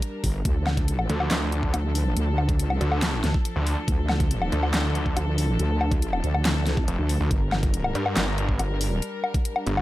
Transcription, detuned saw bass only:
0, 0, Header, 1, 2, 480
1, 0, Start_track
1, 0, Key_signature, -1, "minor"
1, 0, Tempo, 428571
1, 505, Time_signature, 4, 2, 24, 8
1, 10997, End_track
2, 0, Start_track
2, 0, Title_t, "Detuned saw bass"
2, 0, Program_c, 0, 39
2, 1226, Note_on_c, 0, 38, 96
2, 1446, Note_off_c, 0, 38, 0
2, 1466, Note_on_c, 0, 38, 97
2, 1926, Note_off_c, 0, 38, 0
2, 3144, Note_on_c, 0, 38, 95
2, 3606, Note_off_c, 0, 38, 0
2, 3985, Note_on_c, 0, 38, 97
2, 4206, Note_off_c, 0, 38, 0
2, 5065, Note_on_c, 0, 38, 95
2, 5286, Note_off_c, 0, 38, 0
2, 5305, Note_on_c, 0, 38, 101
2, 5766, Note_off_c, 0, 38, 0
2, 7706, Note_on_c, 0, 29, 95
2, 7806, Note_off_c, 0, 29, 0
2, 8066, Note_on_c, 0, 38, 96
2, 8166, Note_off_c, 0, 38, 0
2, 8905, Note_on_c, 0, 43, 94
2, 9126, Note_off_c, 0, 43, 0
2, 9144, Note_on_c, 0, 31, 96
2, 9606, Note_off_c, 0, 31, 0
2, 10824, Note_on_c, 0, 31, 92
2, 10997, Note_off_c, 0, 31, 0
2, 10997, End_track
0, 0, End_of_file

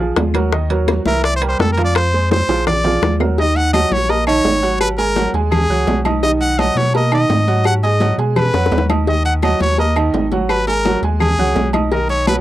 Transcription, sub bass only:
0, 0, Header, 1, 2, 480
1, 0, Start_track
1, 0, Key_signature, -6, "minor"
1, 0, Tempo, 356083
1, 709, Time_signature, 4, 2, 24, 8
1, 16727, End_track
2, 0, Start_track
2, 0, Title_t, "Sub bass"
2, 0, Program_c, 0, 38
2, 0, Note_on_c, 0, 34, 91
2, 172, Note_off_c, 0, 34, 0
2, 219, Note_on_c, 0, 39, 87
2, 1349, Note_off_c, 0, 39, 0
2, 1420, Note_on_c, 0, 36, 97
2, 2096, Note_off_c, 0, 36, 0
2, 2145, Note_on_c, 0, 41, 89
2, 3273, Note_off_c, 0, 41, 0
2, 3347, Note_on_c, 0, 34, 98
2, 4021, Note_off_c, 0, 34, 0
2, 4069, Note_on_c, 0, 39, 89
2, 5195, Note_off_c, 0, 39, 0
2, 5274, Note_on_c, 0, 34, 97
2, 5945, Note_off_c, 0, 34, 0
2, 5987, Note_on_c, 0, 32, 81
2, 7114, Note_off_c, 0, 32, 0
2, 7193, Note_on_c, 0, 39, 92
2, 7641, Note_off_c, 0, 39, 0
2, 7672, Note_on_c, 0, 37, 77
2, 7897, Note_off_c, 0, 37, 0
2, 7915, Note_on_c, 0, 35, 87
2, 9036, Note_off_c, 0, 35, 0
2, 9103, Note_on_c, 0, 47, 102
2, 9777, Note_off_c, 0, 47, 0
2, 9831, Note_on_c, 0, 44, 89
2, 10953, Note_off_c, 0, 44, 0
2, 11025, Note_on_c, 0, 47, 89
2, 11475, Note_off_c, 0, 47, 0
2, 11507, Note_on_c, 0, 41, 79
2, 11732, Note_off_c, 0, 41, 0
2, 11747, Note_on_c, 0, 39, 97
2, 12869, Note_off_c, 0, 39, 0
2, 12946, Note_on_c, 0, 39, 92
2, 13616, Note_off_c, 0, 39, 0
2, 13659, Note_on_c, 0, 32, 86
2, 14784, Note_off_c, 0, 32, 0
2, 14857, Note_on_c, 0, 39, 104
2, 15307, Note_off_c, 0, 39, 0
2, 15336, Note_on_c, 0, 37, 77
2, 15563, Note_off_c, 0, 37, 0
2, 15577, Note_on_c, 0, 35, 80
2, 16700, Note_off_c, 0, 35, 0
2, 16727, End_track
0, 0, End_of_file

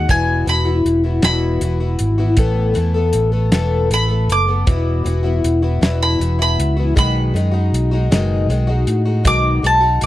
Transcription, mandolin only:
0, 0, Header, 1, 2, 480
1, 0, Start_track
1, 0, Key_signature, 4, "major"
1, 0, Tempo, 763359
1, 57, Time_signature, 6, 3, 24, 8
1, 6328, End_track
2, 0, Start_track
2, 0, Title_t, "Mandolin"
2, 0, Program_c, 0, 25
2, 66, Note_on_c, 0, 80, 84
2, 295, Note_off_c, 0, 80, 0
2, 308, Note_on_c, 0, 83, 86
2, 770, Note_off_c, 0, 83, 0
2, 783, Note_on_c, 0, 83, 104
2, 2199, Note_off_c, 0, 83, 0
2, 2475, Note_on_c, 0, 83, 93
2, 2702, Note_off_c, 0, 83, 0
2, 2717, Note_on_c, 0, 86, 85
2, 3766, Note_off_c, 0, 86, 0
2, 3789, Note_on_c, 0, 83, 84
2, 4019, Note_off_c, 0, 83, 0
2, 4036, Note_on_c, 0, 83, 94
2, 4379, Note_off_c, 0, 83, 0
2, 4392, Note_on_c, 0, 83, 107
2, 5322, Note_off_c, 0, 83, 0
2, 5830, Note_on_c, 0, 86, 101
2, 6059, Note_off_c, 0, 86, 0
2, 6076, Note_on_c, 0, 81, 85
2, 6301, Note_off_c, 0, 81, 0
2, 6328, End_track
0, 0, End_of_file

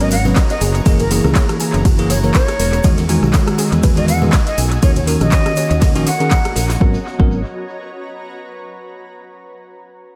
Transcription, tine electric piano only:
0, 0, Header, 1, 2, 480
1, 0, Start_track
1, 0, Key_signature, 5, "minor"
1, 0, Tempo, 495868
1, 832, Time_signature, 4, 2, 24, 8
1, 9831, End_track
2, 0, Start_track
2, 0, Title_t, "Tine electric piano"
2, 0, Program_c, 0, 4
2, 2, Note_on_c, 0, 54, 94
2, 4, Note_on_c, 0, 59, 88
2, 6, Note_on_c, 0, 61, 91
2, 7, Note_on_c, 0, 70, 102
2, 134, Note_off_c, 0, 54, 0
2, 134, Note_off_c, 0, 59, 0
2, 135, Note_off_c, 0, 61, 0
2, 136, Note_off_c, 0, 70, 0
2, 242, Note_on_c, 0, 54, 86
2, 244, Note_on_c, 0, 59, 74
2, 245, Note_on_c, 0, 61, 77
2, 247, Note_on_c, 0, 71, 88
2, 374, Note_off_c, 0, 54, 0
2, 374, Note_off_c, 0, 59, 0
2, 375, Note_off_c, 0, 61, 0
2, 376, Note_off_c, 0, 71, 0
2, 830, Note_on_c, 0, 52, 101
2, 832, Note_on_c, 0, 58, 90
2, 835, Note_on_c, 0, 68, 110
2, 982, Note_off_c, 0, 52, 0
2, 983, Note_off_c, 0, 58, 0
2, 984, Note_off_c, 0, 68, 0
2, 1067, Note_on_c, 0, 52, 84
2, 1072, Note_on_c, 0, 58, 78
2, 1077, Note_on_c, 0, 68, 99
2, 1891, Note_off_c, 0, 52, 0
2, 1893, Note_off_c, 0, 58, 0
2, 1896, Note_off_c, 0, 68, 0
2, 1922, Note_on_c, 0, 52, 96
2, 1925, Note_on_c, 0, 58, 93
2, 1927, Note_on_c, 0, 68, 108
2, 2054, Note_off_c, 0, 52, 0
2, 2055, Note_off_c, 0, 58, 0
2, 2056, Note_off_c, 0, 68, 0
2, 2162, Note_on_c, 0, 52, 83
2, 2165, Note_on_c, 0, 58, 76
2, 2167, Note_on_c, 0, 70, 94
2, 2294, Note_off_c, 0, 52, 0
2, 2295, Note_off_c, 0, 58, 0
2, 2296, Note_off_c, 0, 70, 0
2, 2750, Note_on_c, 0, 51, 104
2, 2752, Note_on_c, 0, 56, 90
2, 2755, Note_on_c, 0, 66, 112
2, 2902, Note_off_c, 0, 51, 0
2, 2903, Note_off_c, 0, 56, 0
2, 2904, Note_off_c, 0, 66, 0
2, 2988, Note_on_c, 0, 51, 89
2, 2992, Note_on_c, 0, 56, 79
2, 2997, Note_on_c, 0, 66, 94
2, 3811, Note_off_c, 0, 51, 0
2, 3813, Note_off_c, 0, 56, 0
2, 3816, Note_off_c, 0, 66, 0
2, 3843, Note_on_c, 0, 51, 97
2, 3845, Note_on_c, 0, 56, 90
2, 3848, Note_on_c, 0, 66, 104
2, 3974, Note_off_c, 0, 51, 0
2, 3975, Note_off_c, 0, 56, 0
2, 3976, Note_off_c, 0, 66, 0
2, 4083, Note_on_c, 0, 51, 85
2, 4085, Note_on_c, 0, 56, 79
2, 4087, Note_on_c, 0, 68, 90
2, 4214, Note_off_c, 0, 51, 0
2, 4215, Note_off_c, 0, 56, 0
2, 4216, Note_off_c, 0, 68, 0
2, 4670, Note_on_c, 0, 51, 105
2, 4672, Note_on_c, 0, 61, 94
2, 4674, Note_on_c, 0, 66, 112
2, 4822, Note_off_c, 0, 51, 0
2, 4823, Note_off_c, 0, 61, 0
2, 4824, Note_off_c, 0, 66, 0
2, 4907, Note_on_c, 0, 51, 88
2, 4912, Note_on_c, 0, 61, 79
2, 4917, Note_on_c, 0, 66, 100
2, 5731, Note_off_c, 0, 51, 0
2, 5733, Note_off_c, 0, 61, 0
2, 5735, Note_off_c, 0, 66, 0
2, 5763, Note_on_c, 0, 51, 102
2, 5766, Note_on_c, 0, 61, 96
2, 5768, Note_on_c, 0, 66, 111
2, 5894, Note_off_c, 0, 51, 0
2, 5895, Note_off_c, 0, 61, 0
2, 5896, Note_off_c, 0, 66, 0
2, 6003, Note_on_c, 0, 51, 84
2, 6006, Note_on_c, 0, 61, 79
2, 6008, Note_on_c, 0, 68, 92
2, 6134, Note_off_c, 0, 51, 0
2, 6135, Note_off_c, 0, 61, 0
2, 6136, Note_off_c, 0, 68, 0
2, 6586, Note_on_c, 0, 54, 88
2, 6591, Note_on_c, 0, 59, 77
2, 6595, Note_on_c, 0, 61, 77
2, 6600, Note_on_c, 0, 70, 95
2, 6733, Note_off_c, 0, 54, 0
2, 6735, Note_off_c, 0, 59, 0
2, 6737, Note_off_c, 0, 61, 0
2, 6740, Note_off_c, 0, 70, 0
2, 6959, Note_on_c, 0, 54, 88
2, 6964, Note_on_c, 0, 59, 83
2, 6968, Note_on_c, 0, 61, 82
2, 6973, Note_on_c, 0, 70, 95
2, 7136, Note_off_c, 0, 54, 0
2, 7138, Note_off_c, 0, 59, 0
2, 7141, Note_off_c, 0, 61, 0
2, 7143, Note_off_c, 0, 70, 0
2, 9831, End_track
0, 0, End_of_file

